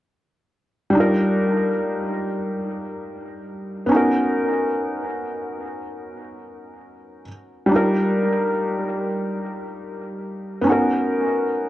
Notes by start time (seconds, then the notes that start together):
0.90 G3 D4
0.95 D#4 F4
1.00 A#4
3.86 B3 C#4
3.92 D#4 F#4
3.96 A#4
7.66 G3 D4
7.71 D#4 F4
7.76 A#4
10.61 B3 C#4
10.67 D#4 F#4
10.72 A#4